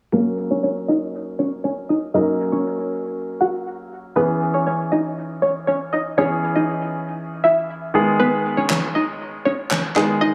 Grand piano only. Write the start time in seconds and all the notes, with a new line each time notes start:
0.12 F#3 A#3 C#4 A#4
2.14 F#3 A#3 C#4 A#4
4.16 E3 B3 C#4 G#4
6.17 E3 B3 C#4 G#4
7.94 D#3 G#3 B3 G#4
9.95 D#3 G#3 B3 G#4